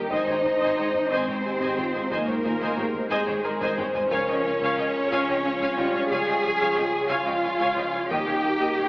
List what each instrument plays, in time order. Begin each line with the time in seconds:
Already playing: detuned saw bass D#1, grand piano G4
0.10 detuned saw bass G#1, double bass section G#1, analog synth pad G#3 D#4 C5, cello section D#4, french horn section C5, viola section C5 D#5, violin section D#5, taiko
0.15 violin section G#5
0.28 double bass section G#1, viola section C5 C#5, violin section G5, taiko low-mid
0.44 double bass section G#1, viola section C5 D#5, violin section G#5, taiko low-mid
0.60 double bass section G#1, viola section C5 D#5, violin section G#5, taiko
0.77 double bass section G#1, viola section C5 C#5, grand piano C5, violin section G5
0.95 taiko low-mid
1.10 double bass section G#1, french horn section G#3, cello section C4, viola section C5 D#5, violin section C5 G#5
1.27 double bass section G#1, viola section C5 C#5, violin section G5, taiko low-mid
1.45 double bass section G#1, french horn section G4, viola section C5 D#5, violin section G#5
1.60 double bass section G#1, viola section C5 D#5, violin section G#5, taiko
1.77 double bass section G#1, french horn section F4, viola section C5 C#5, violin section G5, taiko low-mid
1.94 double bass section G#1, viola section C5 D#5, violin section G#5
2.10 double bass section G#1, cello section A#3, french horn section D#4, violin section A#4 G#5, viola section C5 D#5, taiko
2.27 double bass section G#1, viola section C5 C#5, violin section G5, taiko low-mid
2.44 double bass section G#1, french horn section F4, viola section C5 D#5, violin section G#5, taiko low-mid
2.60 double bass section G#1, viola section C5 D#5, violin section G#5, taiko
2.77 double bass section G#1, french horn section G4, viola section C5 C#5, violin section G5
2.95 taiko low-mid
3.10 double bass section G#1, cello section G#3, violin section G#4 G#5, french horn section G#4, viola section C5 D#5
3.26 double bass section G#1, viola section C5 C#5, violin section G5, taiko low-mid
3.44 double bass section G#1, french horn section A#4, grand piano A#4, viola section C5 D#5, violin section G#5
3.61 double bass section G#1, viola section C5 D#5, violin section G#5, taiko low-mid
3.75 double bass section G#1, french horn section C5, viola section C5 C#5, violin section G5, taiko low-mid
3.95 double bass section G#1, viola section C5 D#5, violin section G#5, taiko low
4.10 detuned saw bass C#2, double bass section C#2, analog synth pad F3 F4 C#5 G#5, cello section C#4, french horn section A#4, violin section C#5 G#5, viola section C#5 F5, taiko
4.28 double bass section C#2, viola section C#5 D#5, violin section G5
4.44 double bass section C#2, viola section C#5 F5, violin section G#5
4.60 double bass section C#2, viola section C#5 F5, violin section G#5, taiko
4.77 double bass section C#2, viola section C#5 D#5, violin section G5
5.10 double bass section C#2, french horn section F4, viola section C#5 F5, violin section G#5
5.28 double bass section C#2, viola section C#5 D#5, violin section G5
5.45 double bass section C#2, viola section C#5 F5, violin section G#5
5.60 double bass section C#2, viola section C#5 F5, violin section G#5, taiko
5.76 double bass section C#2, grand piano G3 F4, viola section C#5 D#5, violin section G5
5.93 double bass section C#2, viola section C#5 F5, violin section G#5
6.10 double bass section C#2, french horn section F4, cello section G#4, viola section C#5 F5, violin section G#5, taiko
6.26 double bass section C#2, viola section C#5 D#5, violin section G5
6.43 double bass section C#2, viola section C#5 F5, violin section G#5
6.60 double bass section C#2, viola section C#5 F5, violin section G#5, taiko
6.76 double bass section C#2, viola section C#5 D#5, violin section G5
7.08 double bass section C#2, french horn section F4, cello section F4, viola section C#5 F5, violin section F5 G#5
7.26 double bass section C#2, viola section C#5 D#5, violin section G5
7.42 double bass section C#2, viola section C#5 F5, violin section G#5
7.58 double bass section C#2, viola section C#5 F5, violin section G#5, taiko
7.76 double bass section C#2, viola section C#5 D#5, violin section G5
7.92 double bass section C#2, viola section C#5 F5, violin section G#5
8.09 detuned saw bass D#1, double bass section D#2, analog synth pad A#3 D#4 D#5 G5, french horn section D#4, cello section G4, viola section A#4 D#5, violin section G5, taiko
8.26 double bass section D#2, viola section A#4 C#5, violin section F5
8.43 double bass section D#2, viola section A#4 D#5, violin section G5
8.60 double bass section D#2, viola section A#4 D#5, violin section G5, taiko
8.77 double bass section D#2, viola section A#4 C#5, violin section F5